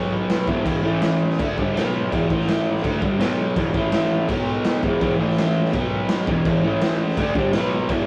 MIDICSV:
0, 0, Header, 1, 3, 480
1, 0, Start_track
1, 0, Tempo, 361882
1, 875, Time_signature, 4, 2, 24, 8
1, 10697, End_track
2, 0, Start_track
2, 0, Title_t, "Overdriven electric guitar"
2, 0, Program_c, 0, 29
2, 0, Note_on_c, 0, 47, 100
2, 0, Note_on_c, 0, 54, 102
2, 0, Note_on_c, 0, 59, 104
2, 621, Note_off_c, 0, 47, 0
2, 621, Note_on_c, 0, 40, 100
2, 628, Note_off_c, 0, 54, 0
2, 634, Note_off_c, 0, 59, 0
2, 641, Note_on_c, 0, 52, 115
2, 643, Note_on_c, 0, 47, 106
2, 842, Note_off_c, 0, 40, 0
2, 845, Note_off_c, 0, 47, 0
2, 858, Note_on_c, 0, 40, 97
2, 859, Note_off_c, 0, 52, 0
2, 861, Note_on_c, 0, 47, 91
2, 875, Note_on_c, 0, 52, 106
2, 1086, Note_off_c, 0, 52, 0
2, 1088, Note_off_c, 0, 47, 0
2, 1093, Note_on_c, 0, 45, 93
2, 1101, Note_off_c, 0, 40, 0
2, 1102, Note_on_c, 0, 52, 100
2, 1110, Note_on_c, 0, 57, 97
2, 1822, Note_off_c, 0, 45, 0
2, 1826, Note_off_c, 0, 52, 0
2, 1830, Note_off_c, 0, 57, 0
2, 1835, Note_on_c, 0, 50, 88
2, 1849, Note_on_c, 0, 57, 96
2, 1854, Note_on_c, 0, 62, 107
2, 2072, Note_off_c, 0, 50, 0
2, 2079, Note_off_c, 0, 57, 0
2, 2081, Note_off_c, 0, 62, 0
2, 2082, Note_on_c, 0, 43, 94
2, 2095, Note_on_c, 0, 50, 102
2, 2109, Note_on_c, 0, 55, 103
2, 2316, Note_off_c, 0, 43, 0
2, 2319, Note_off_c, 0, 50, 0
2, 2319, Note_on_c, 0, 47, 91
2, 2327, Note_off_c, 0, 55, 0
2, 2327, Note_on_c, 0, 54, 85
2, 2338, Note_on_c, 0, 59, 94
2, 2786, Note_off_c, 0, 47, 0
2, 2794, Note_on_c, 0, 40, 93
2, 2799, Note_off_c, 0, 54, 0
2, 2802, Note_on_c, 0, 47, 92
2, 2805, Note_off_c, 0, 59, 0
2, 2820, Note_on_c, 0, 52, 105
2, 3033, Note_off_c, 0, 40, 0
2, 3036, Note_off_c, 0, 47, 0
2, 3041, Note_on_c, 0, 45, 91
2, 3046, Note_off_c, 0, 52, 0
2, 3061, Note_on_c, 0, 52, 98
2, 3070, Note_on_c, 0, 57, 106
2, 3743, Note_off_c, 0, 57, 0
2, 3747, Note_off_c, 0, 45, 0
2, 3752, Note_on_c, 0, 50, 102
2, 3754, Note_off_c, 0, 52, 0
2, 3759, Note_on_c, 0, 57, 100
2, 3765, Note_on_c, 0, 62, 113
2, 3983, Note_off_c, 0, 50, 0
2, 3989, Note_on_c, 0, 43, 89
2, 3997, Note_off_c, 0, 57, 0
2, 3999, Note_on_c, 0, 50, 88
2, 4000, Note_off_c, 0, 62, 0
2, 4003, Note_on_c, 0, 55, 96
2, 4223, Note_off_c, 0, 50, 0
2, 4228, Note_on_c, 0, 47, 103
2, 4232, Note_off_c, 0, 43, 0
2, 4234, Note_off_c, 0, 55, 0
2, 4240, Note_on_c, 0, 54, 99
2, 4250, Note_on_c, 0, 59, 105
2, 4707, Note_off_c, 0, 47, 0
2, 4711, Note_on_c, 0, 40, 97
2, 4718, Note_off_c, 0, 54, 0
2, 4723, Note_off_c, 0, 59, 0
2, 4723, Note_on_c, 0, 47, 95
2, 4735, Note_on_c, 0, 52, 98
2, 4948, Note_off_c, 0, 47, 0
2, 4948, Note_off_c, 0, 52, 0
2, 4953, Note_off_c, 0, 40, 0
2, 4953, Note_on_c, 0, 45, 101
2, 4964, Note_on_c, 0, 52, 86
2, 4975, Note_on_c, 0, 57, 100
2, 5668, Note_off_c, 0, 45, 0
2, 5673, Note_on_c, 0, 47, 95
2, 5680, Note_off_c, 0, 52, 0
2, 5685, Note_off_c, 0, 57, 0
2, 5690, Note_on_c, 0, 54, 96
2, 5707, Note_on_c, 0, 59, 114
2, 6394, Note_off_c, 0, 47, 0
2, 6402, Note_off_c, 0, 54, 0
2, 6404, Note_on_c, 0, 40, 105
2, 6409, Note_on_c, 0, 47, 115
2, 6411, Note_off_c, 0, 59, 0
2, 6421, Note_on_c, 0, 52, 121
2, 6626, Note_off_c, 0, 40, 0
2, 6633, Note_off_c, 0, 47, 0
2, 6642, Note_on_c, 0, 40, 96
2, 6643, Note_off_c, 0, 52, 0
2, 6649, Note_on_c, 0, 47, 94
2, 6659, Note_on_c, 0, 52, 105
2, 6858, Note_off_c, 0, 47, 0
2, 6863, Note_on_c, 0, 45, 97
2, 6868, Note_off_c, 0, 52, 0
2, 6878, Note_off_c, 0, 40, 0
2, 6884, Note_on_c, 0, 52, 92
2, 6886, Note_on_c, 0, 57, 113
2, 7587, Note_off_c, 0, 45, 0
2, 7597, Note_off_c, 0, 52, 0
2, 7597, Note_on_c, 0, 47, 97
2, 7598, Note_off_c, 0, 57, 0
2, 7607, Note_on_c, 0, 54, 107
2, 7614, Note_on_c, 0, 59, 110
2, 8312, Note_off_c, 0, 47, 0
2, 8317, Note_off_c, 0, 54, 0
2, 8320, Note_off_c, 0, 59, 0
2, 8320, Note_on_c, 0, 40, 106
2, 8328, Note_on_c, 0, 47, 98
2, 8345, Note_on_c, 0, 52, 107
2, 8547, Note_off_c, 0, 40, 0
2, 8557, Note_off_c, 0, 47, 0
2, 8563, Note_on_c, 0, 40, 102
2, 8566, Note_off_c, 0, 52, 0
2, 8571, Note_on_c, 0, 47, 103
2, 8580, Note_on_c, 0, 52, 106
2, 8794, Note_off_c, 0, 40, 0
2, 8794, Note_off_c, 0, 52, 0
2, 8796, Note_off_c, 0, 47, 0
2, 8802, Note_on_c, 0, 45, 96
2, 8810, Note_on_c, 0, 52, 95
2, 8827, Note_on_c, 0, 57, 101
2, 9510, Note_off_c, 0, 45, 0
2, 9513, Note_off_c, 0, 57, 0
2, 9514, Note_off_c, 0, 52, 0
2, 9519, Note_on_c, 0, 50, 105
2, 9529, Note_on_c, 0, 57, 106
2, 9539, Note_on_c, 0, 62, 114
2, 9736, Note_off_c, 0, 50, 0
2, 9749, Note_on_c, 0, 43, 85
2, 9752, Note_on_c, 0, 50, 105
2, 9754, Note_off_c, 0, 57, 0
2, 9759, Note_off_c, 0, 62, 0
2, 9766, Note_on_c, 0, 55, 105
2, 9983, Note_off_c, 0, 43, 0
2, 9985, Note_off_c, 0, 50, 0
2, 9992, Note_off_c, 0, 55, 0
2, 9994, Note_on_c, 0, 47, 95
2, 10005, Note_on_c, 0, 54, 97
2, 10017, Note_on_c, 0, 59, 108
2, 10456, Note_off_c, 0, 47, 0
2, 10463, Note_on_c, 0, 40, 93
2, 10469, Note_off_c, 0, 54, 0
2, 10472, Note_on_c, 0, 47, 109
2, 10475, Note_off_c, 0, 59, 0
2, 10490, Note_on_c, 0, 52, 113
2, 10697, Note_off_c, 0, 40, 0
2, 10697, Note_off_c, 0, 47, 0
2, 10697, Note_off_c, 0, 52, 0
2, 10697, End_track
3, 0, Start_track
3, 0, Title_t, "Drums"
3, 391, Note_on_c, 9, 49, 63
3, 395, Note_on_c, 9, 38, 107
3, 524, Note_off_c, 9, 49, 0
3, 528, Note_off_c, 9, 38, 0
3, 630, Note_on_c, 9, 36, 104
3, 762, Note_off_c, 9, 36, 0
3, 871, Note_on_c, 9, 36, 110
3, 878, Note_on_c, 9, 49, 67
3, 1004, Note_off_c, 9, 36, 0
3, 1011, Note_off_c, 9, 49, 0
3, 1348, Note_on_c, 9, 49, 61
3, 1352, Note_on_c, 9, 38, 111
3, 1481, Note_off_c, 9, 49, 0
3, 1485, Note_off_c, 9, 38, 0
3, 1726, Note_on_c, 9, 38, 30
3, 1850, Note_on_c, 9, 36, 110
3, 1853, Note_on_c, 9, 49, 68
3, 1859, Note_off_c, 9, 38, 0
3, 1983, Note_off_c, 9, 36, 0
3, 1986, Note_off_c, 9, 49, 0
3, 2093, Note_on_c, 9, 36, 95
3, 2226, Note_off_c, 9, 36, 0
3, 2348, Note_on_c, 9, 49, 62
3, 2352, Note_on_c, 9, 38, 105
3, 2480, Note_off_c, 9, 49, 0
3, 2484, Note_off_c, 9, 38, 0
3, 2817, Note_on_c, 9, 36, 112
3, 2824, Note_on_c, 9, 49, 62
3, 2950, Note_off_c, 9, 36, 0
3, 2956, Note_off_c, 9, 49, 0
3, 3055, Note_on_c, 9, 36, 104
3, 3183, Note_on_c, 9, 38, 36
3, 3187, Note_off_c, 9, 36, 0
3, 3293, Note_on_c, 9, 49, 60
3, 3297, Note_off_c, 9, 38, 0
3, 3297, Note_on_c, 9, 38, 114
3, 3426, Note_off_c, 9, 49, 0
3, 3430, Note_off_c, 9, 38, 0
3, 3662, Note_on_c, 9, 38, 33
3, 3769, Note_on_c, 9, 36, 104
3, 3771, Note_on_c, 9, 49, 61
3, 3795, Note_off_c, 9, 38, 0
3, 3902, Note_off_c, 9, 36, 0
3, 3903, Note_off_c, 9, 49, 0
3, 4007, Note_on_c, 9, 36, 95
3, 4139, Note_off_c, 9, 36, 0
3, 4251, Note_on_c, 9, 49, 65
3, 4255, Note_on_c, 9, 38, 111
3, 4383, Note_off_c, 9, 49, 0
3, 4387, Note_off_c, 9, 38, 0
3, 4726, Note_on_c, 9, 36, 106
3, 4729, Note_on_c, 9, 49, 66
3, 4859, Note_off_c, 9, 36, 0
3, 4862, Note_off_c, 9, 49, 0
3, 4965, Note_on_c, 9, 36, 109
3, 5097, Note_off_c, 9, 36, 0
3, 5199, Note_on_c, 9, 49, 65
3, 5203, Note_on_c, 9, 38, 116
3, 5332, Note_off_c, 9, 49, 0
3, 5336, Note_off_c, 9, 38, 0
3, 5688, Note_on_c, 9, 36, 115
3, 5697, Note_on_c, 9, 49, 69
3, 5821, Note_off_c, 9, 36, 0
3, 5829, Note_off_c, 9, 49, 0
3, 6160, Note_on_c, 9, 49, 60
3, 6164, Note_on_c, 9, 38, 111
3, 6293, Note_off_c, 9, 49, 0
3, 6297, Note_off_c, 9, 38, 0
3, 6407, Note_on_c, 9, 36, 105
3, 6540, Note_off_c, 9, 36, 0
3, 6648, Note_on_c, 9, 49, 58
3, 6650, Note_on_c, 9, 36, 108
3, 6780, Note_off_c, 9, 49, 0
3, 6783, Note_off_c, 9, 36, 0
3, 7028, Note_on_c, 9, 38, 32
3, 7139, Note_on_c, 9, 49, 65
3, 7143, Note_off_c, 9, 38, 0
3, 7143, Note_on_c, 9, 38, 112
3, 7272, Note_off_c, 9, 49, 0
3, 7276, Note_off_c, 9, 38, 0
3, 7496, Note_on_c, 9, 38, 34
3, 7607, Note_on_c, 9, 49, 59
3, 7608, Note_on_c, 9, 36, 107
3, 7629, Note_off_c, 9, 38, 0
3, 7740, Note_off_c, 9, 36, 0
3, 7740, Note_off_c, 9, 49, 0
3, 8074, Note_on_c, 9, 49, 63
3, 8078, Note_on_c, 9, 38, 117
3, 8206, Note_off_c, 9, 49, 0
3, 8210, Note_off_c, 9, 38, 0
3, 8321, Note_on_c, 9, 36, 112
3, 8454, Note_off_c, 9, 36, 0
3, 8557, Note_on_c, 9, 49, 63
3, 8560, Note_on_c, 9, 36, 103
3, 8689, Note_off_c, 9, 49, 0
3, 8693, Note_off_c, 9, 36, 0
3, 9036, Note_on_c, 9, 49, 69
3, 9040, Note_on_c, 9, 38, 109
3, 9169, Note_off_c, 9, 49, 0
3, 9173, Note_off_c, 9, 38, 0
3, 9410, Note_on_c, 9, 38, 32
3, 9515, Note_on_c, 9, 36, 116
3, 9519, Note_on_c, 9, 49, 68
3, 9543, Note_off_c, 9, 38, 0
3, 9647, Note_off_c, 9, 36, 0
3, 9652, Note_off_c, 9, 49, 0
3, 9754, Note_on_c, 9, 36, 106
3, 9886, Note_off_c, 9, 36, 0
3, 9987, Note_on_c, 9, 49, 64
3, 9991, Note_on_c, 9, 38, 114
3, 10120, Note_off_c, 9, 49, 0
3, 10124, Note_off_c, 9, 38, 0
3, 10465, Note_on_c, 9, 49, 64
3, 10466, Note_on_c, 9, 36, 103
3, 10598, Note_off_c, 9, 49, 0
3, 10599, Note_off_c, 9, 36, 0
3, 10697, End_track
0, 0, End_of_file